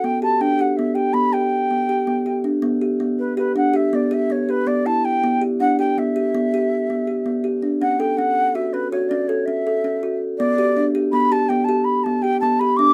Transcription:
<<
  \new Staff \with { instrumentName = "Flute" } { \time 7/4 \key g \lydian \tempo 4 = 162 g''8 a''8 g''8 fis''8 e''8 g''8 b''8 g''2. r8 | r4. b'8 b'8 fis''8 e''8 d''8 e''8 cis''8 b'8 d''8 a''8 g''8~ | g''8 r8 fis''8 g''8 e''1 r4 | fis''8 g''8 fis''4 e''8 b'8 cis''8 d''8 cis''8 e''2 r8 |
d''2 b''8 a''8 g''8 a''8 b''8 a''8 g''8 a''8 b''8 d'''8 | }
  \new Staff \with { instrumentName = "Kalimba" } { \time 7/4 \key g \lydian b8 g'8 d'8 g'8 b8 g'8 b8 g'4 b8 g'8 b8 g'8 d'8 | b8 g'8 b4 g'8 d'8 g'8 b8 g'8 b8 g'8 b8 e'4 | b8 g'8 d'8 g'8 b8 g'8 b8 g'4 b8 g'8 b8 g'8 d'8 | cis'8 a'8 cis'4 fis'8 cis'8 fis'8 cis'8 a'8 cis'8 a'8 cis'8 fis'4 |
b8 g'8 d'8 g'8 b8 g'8 b8 g'4 b8 g'8 b8 g'8 d'8 | }
>>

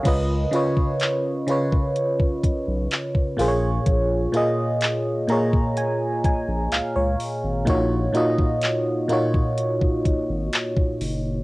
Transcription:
<<
  \new Staff \with { instrumentName = "FM electric piano" } { \time 4/4 \key cis \mixolydian \tempo 4 = 63 << { ais'16 r2. r8. | r4. ais''8 gis''8 gis''8 eis''16 cis''8. | r1 | } \\ { <cis cis' eis' b' dis''>8 <cis cis' eis' b' cis''>8 r8 <cis cis' eis' b' cis''>4. r8 <ais, ais eis' gis' bis' cis''>8~ | <ais, ais eis' gis' bis' cis''>8 <ais, ais eis' gis' dis''>8 r8 <ais, ais eis' gis' cis''>4. r4 | <ais, ais dis' eis' fis' cis''>8 <ais, ais dis' eis' fis' dis''>8 r8 <ais, ais dis' eis' fis' cis''>4. r4 | } >> }
  \new Staff \with { instrumentName = "Sub bass" } { \clef bass \time 4/4 \key cis \mixolydian cis,8 r2 b,,16 b,,16 r8 ais,,8 | ais,,8 r2 ais,,16 ais,,16 cis,16 cis,16 r16 gis,,16 | ais,,8 r2 gis,,16 gis,,16 r8 fis,,8 | }
  \new DrumStaff \with { instrumentName = "Drums" } \drummode { \time 4/4 <cymc hh bd>8 hh16 bd16 <hc hh>8 hh16 bd16 hh16 bd16 <hh bd>8 <hc hh>16 bd16 hho8 | <hh bd>8 hh8 <hc hh>8 hh16 bd16 hh8 <hh bd>8 <hc hh>8 hho8 | <hh bd>8 hh16 bd16 <hc hh>8 hh16 bd16 hh16 bd16 <hh bd>8 <hc hh>16 bd16 hho8 | }
>>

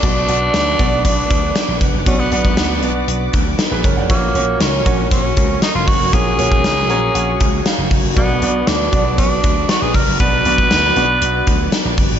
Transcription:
<<
  \new Staff \with { instrumentName = "String machine" } { \time 4/4 \key b \lydian \tempo 4 = 118 << { <b' d'' d'''>1~ | <b' d'' d'''>1 | <ais' cis'' cis'''>1~ | <ais' cis'' cis'''>1 |
<b' d'' d'''>1~ | <b' d'' d'''>1 | } \\ { fis''1~ | fis''1 | fis'1~ | fis'1~ |
fis'1~ | fis'1 | } >> }
  \new Staff \with { instrumentName = "Grand piano" } { \time 4/4 \key b \lydian << { r1 | r2. r16 <gis' b'>16 <ais' cis''>16 <d'' fis''>16~ | <d'' fis''>16 r2. r8. | r4. ais''8 fis''4 eis''4 |
r1 | r1 | } \\ { <b d' fis' d''>8 <b d' fis' d''>4 <b d' fis' d''>2 r8 | <b d' fis' d''>8 <b d' fis' d''>4 <b d' fis' d''>2 r8 | <ais cis' fis' cis''>8 <ais cis' fis' cis''>4 <ais cis' fis' cis''>2 r8 | <ais cis' fis' cis''>8 <ais cis' fis' cis''>4 <ais cis' fis' cis''>2 r8 |
<b d' fis' d''>8 <b d' fis' d''>4 <b d' fis' d''>2 r8 | <b d' fis' d''>8 <b d' fis' d''>4 <b d' fis' d''>2 r8 | } >> }
  \new Staff \with { instrumentName = "Grand piano" } { \clef bass \time 4/4 \key b \lydian b,4. r2 r8 | b,4. r2 r8 | ais,4. r2 r8 | ais,4. r2 r8 |
b,4. r2 r8 | b,4. r2 r8 | }
  \new Staff \with { instrumentName = "Tenor saxophone" } { \time 4/4 \key b \lydian d'2 d'4. r8 | cis'16 b16 b4 r2 r8 | ais4 cis'4 cis'4 dis'16 eis'16 fis'8 | gis'2.~ gis'8 r8 |
b4 d'4 d'4 fis'16 gis'16 ais'8 | b'2.~ b'8 r8 | }
  \new Staff \with { instrumentName = "Slap bass" } { \clef bass \time 4/4 \key b \lydian b,,8 b,,8 d,8 b,,8 b,,8 d,8 r16 ais,,16 eis,,16 fis,,16 | b,,8 b,,8 d,8 b,,8 b,,8 d,8 r16 ais,,16 fis,,16 eis,,16 | ais,,8 ais,,8 cis,8 ais,,8 ais,,8 cis,8 r16 fis,,16 fis,,16 eis,,16 | ais,,8 ais,,8 cis,8 ais,,8 ais,,8 cis,8 r16 fis,,16 eis,,16 fis,,16 |
b,,8 b,,8 d,8 b,,8 b,,8 d,8 r16 ais,,16 eis,,16 fis,,16 | b,,8 b,,8 d,8 b,,8 b,,8 d,8 r16 ais,,16 fis,,16 gis,,16 | }
  \new DrumStaff \with { instrumentName = "Drums" } \drummode { \time 4/4 <hh bd>8 hh8 <hh sn>8 <hh bd>8 <hh bd>8 <hh bd>8 <hh sn>8 <hh bd>8 | <hh bd>8 hh16 bd16 <hh sn>8 hh8 hh8 <hh bd>8 <hh sn>8 <hh bd>8 | <hh bd>8 hh8 <hh sn>8 <hh bd>8 <hh bd>8 <hh bd>8 <hh sn>8 <hho bd>8 | <hh bd>8 hh16 bd16 <hh sn>8 hh8 hh8 <hh bd>8 <hh sn>8 <hho bd>8 |
<hh bd>8 hh8 <hh sn>8 <hh bd>8 <hh bd>8 <hh bd>8 <hh sn>8 <hho bd>8 | <hh bd>8 hh16 bd16 <hh sn>8 hh8 hh8 <hh bd>8 <hh sn>8 <hho bd>8 | }
>>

